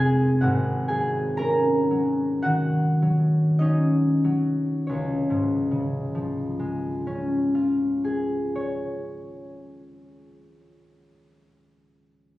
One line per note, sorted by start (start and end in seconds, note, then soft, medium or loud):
0.00 0.45 F1 medium
0.00 0.46 F2 soft
0.00 0.45 C3 soft
0.00 3.85 G#3 soft
0.00 0.46 C4 soft
0.00 0.88 G#4 medium
0.00 1.37 A#4 medium
0.00 0.45 C5 medium
0.00 0.87 G#5 medium
0.00 0.93 A#5 medium
0.00 0.45 C6 medium
0.41 4.32 G#1 soft
0.41 4.33 G#2 soft
0.41 2.42 F#4 medium
0.41 2.41 F#5 medium
0.88 1.89 F#3 soft
0.88 4.79 G#4 medium
0.88 4.78 G#5 medium
1.37 3.60 C#4 soft
1.37 4.94 A#4 medium
1.37 4.93 A#5 medium
1.91 3.01 F#3 soft
2.42 4.94 D#3 soft
2.42 4.93 F#4 medium
2.42 4.93 F#5 medium
3.02 4.23 F#3 soft
3.59 7.06 C#4 soft
3.59 4.94 D#4 soft
3.59 4.94 D#5 medium
4.24 4.94 F#3 soft
4.87 8.79 C#2 soft
4.87 8.54 C#5 soft
5.30 9.20 G#2 soft
5.71 9.61 C#3 soft
6.15 9.97 F3 soft
6.60 10.39 G#3 soft
7.07 10.87 C#4 soft
7.55 11.35 F4 soft
8.04 11.45 G#4 soft
8.55 11.44 C#5 soft